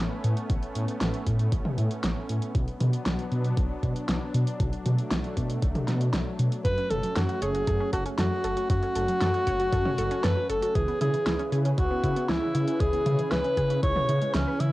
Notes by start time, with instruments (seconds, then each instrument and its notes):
Already playing: analog synth pad A3 B3 C#4
0.24 detuned saw bass A2, closed hi-hat
0.37 closed hi-hat
0.50 detuned saw bass A1, kick, closed hi-hat
0.62 closed hi-hat
0.75 detuned saw bass A2, closed hi-hat
0.88 closed hi-hat
1.01 detuned saw bass A1, snare, closed hi-hat
1.14 closed hi-hat
1.27 detuned saw bass A2, kick, closed hi-hat
1.39 closed hi-hat
1.52 detuned saw bass A1, kick, closed hi-hat
1.65 mid tom
1.78 detuned saw bass A2, closed hi-hat
1.91 closed hi-hat
2.03 detuned saw bass A1, snare, closed hi-hat
2.29 detuned saw bass A2, closed hi-hat
2.42 closed hi-hat
2.55 detuned saw bass B1, analog synth pad F#3 B3 D4, kick, closed hi-hat
2.68 closed hi-hat
2.80 detuned saw bass B2, closed hi-hat, mid tom
2.93 closed hi-hat
3.06 detuned saw bass B1, snare, closed hi-hat
3.19 closed hi-hat
3.32 detuned saw bass B2, closed hi-hat
3.45 closed hi-hat
3.57 detuned saw bass B1, kick, closed hi-hat
3.83 detuned saw bass B2, kick, closed hi-hat
3.96 closed hi-hat
4.09 detuned saw bass B1, snare, closed hi-hat
4.34 detuned saw bass B2, closed hi-hat
4.47 closed hi-hat
4.60 detuned saw bass B1, analog synth pad A3, kick, closed hi-hat
4.73 closed hi-hat
4.86 detuned saw bass B2, closed hi-hat, mid tom
4.98 closed hi-hat
5.11 detuned saw bass B1, snare, closed hi-hat
5.24 closed hi-hat
5.37 detuned saw bass B2, kick, closed hi-hat
5.50 closed hi-hat
5.62 detuned saw bass B1, kick, closed hi-hat
5.75 closed hi-hat, mid tom
5.88 detuned saw bass B2, snare, closed hi-hat
6.01 closed hi-hat
6.14 detuned saw bass B1, snare, closed hi-hat
6.39 detuned saw bass B2, closed hi-hat
6.52 closed hi-hat
6.65 detuned saw bass F#2, synth arpeggio sound F#3, analog synth pad A3 C#4, alto saxophone B4, kick, closed hi-hat
6.78 synth arpeggio sound C#4, closed hi-hat
6.91 detuned saw bass F#1, alto saxophone A4, synth arpeggio sound A4, closed hi-hat, mid tom
7.03 synth arpeggio sound F#3, closed hi-hat
7.16 detuned saw bass F#2, alto saxophone F#4, synth arpeggio sound A4, snare, closed hi-hat
7.29 synth arpeggio sound F#4, closed hi-hat
7.42 detuned saw bass F#1, alto saxophone G#4, synth arpeggio sound C#5, closed hi-hat
7.55 synth arpeggio sound F#4, closed hi-hat
7.67 detuned saw bass F#2, synth arpeggio sound A4, kick, closed hi-hat
7.80 synth arpeggio sound C#4
7.93 detuned saw bass F#1, alto saxophone F#4, synth arpeggio sound A4, kick, closed hi-hat
8.06 synth arpeggio sound C#4, closed hi-hat
8.19 detuned saw bass F#2, alto saxophone F#4, synth arpeggio sound A4, snare, closed hi-hat
8.32 synth arpeggio sound F#3
8.44 detuned saw bass F#1, synth arpeggio sound A4, closed hi-hat
8.57 synth arpeggio sound F#4, closed hi-hat
8.70 detuned saw bass F#2, synth arpeggio sound F#3, alto saxophone F#4, kick, closed hi-hat
8.83 synth arpeggio sound C#4, closed hi-hat
8.96 detuned saw bass F#1, synth arpeggio sound A4, closed hi-hat
9.09 synth arpeggio sound F#3, closed hi-hat
9.21 detuned saw bass F#2, synth arpeggio sound A4, snare, closed hi-hat
9.34 synth arpeggio sound F#4, closed hi-hat
9.47 detuned saw bass F#1, synth arpeggio sound C#5, kick, closed hi-hat
9.60 synth arpeggio sound F#4, closed hi-hat
9.73 detuned saw bass F#2, synth arpeggio sound A4, kick, closed hi-hat
9.86 synth arpeggio sound C#4, mid tom
9.98 detuned saw bass F#1, synth arpeggio sound A4, closed hi-hat
10.11 synth arpeggio sound C#4, closed hi-hat
10.24 detuned saw bass F#2, synth arpeggio sound A4, alto saxophone B4, snare, closed hi-hat
10.37 synth arpeggio sound F#3
10.50 detuned saw bass F#1, synth arpeggio sound A4, alto saxophone A4, closed hi-hat
10.62 synth arpeggio sound F#4, closed hi-hat
10.75 detuned saw bass C#2, analog synth pad C#3 E4 G#4 B4, synth arpeggio sound E3, alto saxophone G#4, kick, closed hi-hat
10.88 synth arpeggio sound B3, closed hi-hat
11.01 detuned saw bass C#3, synth arpeggio sound E4, alto saxophone G#4, closed hi-hat, mid tom
11.14 synth arpeggio sound E3, closed hi-hat
11.26 detuned saw bass C#2, synth arpeggio sound E4, snare, closed hi-hat
11.39 synth arpeggio sound C#4, closed hi-hat
11.52 detuned saw bass C#3, synth arpeggio sound G#4, closed hi-hat
11.65 synth arpeggio sound C#4, closed hi-hat
11.78 detuned saw bass C#2, synth arpeggio sound E4, alto saxophone F#4, kick, closed hi-hat
11.91 synth arpeggio sound B3
12.03 detuned saw bass C#3, synth arpeggio sound E4, kick, closed hi-hat
12.16 synth arpeggio sound B3, closed hi-hat
12.29 detuned saw bass C#2, alto saxophone E4, synth arpeggio sound E4, snare, closed hi-hat
12.42 synth arpeggio sound E3
12.55 detuned saw bass C#3, synth arpeggio sound E4, closed hi-hat
12.68 synth arpeggio sound C#4, closed hi-hat
12.80 detuned saw bass C#2, synth arpeggio sound E3, alto saxophone G#4, kick, closed hi-hat
12.93 synth arpeggio sound B3, closed hi-hat
13.06 detuned saw bass C#3, synth arpeggio sound E4, closed hi-hat, mid tom
13.19 synth arpeggio sound E3, closed hi-hat
13.32 detuned saw bass C#2, synth arpeggio sound E4, alto saxophone B4, snare, closed hi-hat
13.44 synth arpeggio sound C#4, closed hi-hat
13.57 detuned saw bass C#3, synth arpeggio sound G#4, kick, closed hi-hat
13.70 synth arpeggio sound C#4, closed hi-hat
13.83 detuned saw bass C#2, synth arpeggio sound E4, alto saxophone C#5, kick, closed hi-hat
13.96 synth arpeggio sound B3, mid tom
14.09 detuned saw bass C#3, synth arpeggio sound E4, closed hi-hat
14.21 synth arpeggio sound G#3, closed hi-hat
14.34 detuned saw bass C#2, synth arpeggio sound E3, alto saxophone C#4, snare, closed hi-hat
14.47 synth arpeggio sound B4
14.60 detuned saw bass C#3, synth arpeggio sound E3, alto saxophone E4, closed hi-hat